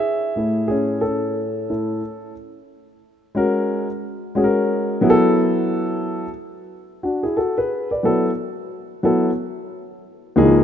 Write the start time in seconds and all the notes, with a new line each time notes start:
Already playing: G#4 E5
0.36 A2 A3 E4
0.68 C#4 G#4
1.01 C#4 A4
1.69 A2 A3 E4
3.35 G#3 C#4 F#4 A#4
4.35 G#3 C#4 F#4 G#4
4.44 A#4
5.01 F#3 B3 E4 G#4
5.10 A4
7.03 D4 F#4
7.23 E4 G#4
7.37 F#4 A4
7.58 G#4 B4
7.91 B4 D5
8.03 F#3 B3 E4 A4
9.03 F#3 B3 E4 A4
10.36 C#2 E3 A#3 D#4 G#4
10.43 F3